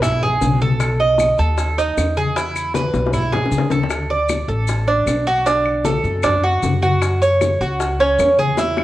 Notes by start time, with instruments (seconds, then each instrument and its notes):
Already playing: upright bass B1
0.02 cuban tres E4, high bongo, high conga, low conga, claves, maracas
0.21 cuban tres G#4, high bongo, high conga, low conga
0.41 upright bass B1, high bongo, low bongo, high conga, maracas
0.61 cuban tres A4, high conga, maracas
0.80 high bongo, high conga, claves, maracas
1.00 cuban tres D#5, high bongo, high conga
1.18 high bongo, high conga, claves, maracas
1.38 upright bass D#2, cuban tres A4, high bongo, maracas
1.58 high bongo, high conga, maracas
1.77 cuban tres D#4, high bongo, high conga, maracas
1.97 upright bass E2, high bongo, low bongo, high conga, claves, maracas
2.17 cuban tres G#4, high conga, maracas
2.36 cuban tres E4, high bongo, high conga, maracas
2.55 high bongo, high conga, claves, maracas
2.74 cuban tres B4, high bongo, high conga, maracas
2.94 upright bass B1, high bongo, high conga, maracas
3.06 high bongo
3.13 cuban tres E4, high conga, low conga, claves, maracas
3.32 cuban tres G#4, high bongo, high conga, low conga
3.46 low bongo
3.51 upright bass D2, high conga, maracas
3.58 low bongo
3.70 cuban tres A4, low bongo, high conga, maracas
3.83 low bongo
3.90 high bongo, claves, maracas
4.09 cuban tres D5, high bongo, high conga
4.29 high bongo, high conga, claves, maracas
4.48 upright bass A1, cuban tres A4, high bongo, maracas
4.68 high bongo, high conga, maracas
4.87 cuban tres D4, high bongo, high conga
5.06 upright bass B1, high bongo, low bongo, high conga, claves, maracas
5.27 cuban tres F#4, maracas
5.46 cuban tres D4, high bongo, high conga, maracas
5.66 high bongo, high conga, claves
5.85 cuban tres A4, high bongo, high conga, maracas
6.04 upright bass F#2, high bongo, high conga, maracas
6.23 cuban tres D4, high bongo, high conga, low conga, claves, maracas
6.43 cuban tres F#4, high bongo, high conga
6.63 upright bass F#2, high bongo, low bongo, high conga, maracas
6.82 cuban tres F#4, high conga, maracas
7.01 high bongo, claves, maracas
7.21 cuban tres C#5, high bongo, high conga, maracas
7.41 high bongo, high conga, claves, maracas
7.60 upright bass C#2, cuban tres F#4, high bongo, maracas
7.80 high bongo, high conga, maracas
7.99 cuban tres C#4, high bongo, high conga
8.18 upright bass E2, high bongo, low bongo, high conga, claves, maracas
8.38 cuban tres G#4, high conga, maracas
8.57 cuban tres E4, high bongo, high conga, maracas
8.77 high bongo, high conga, claves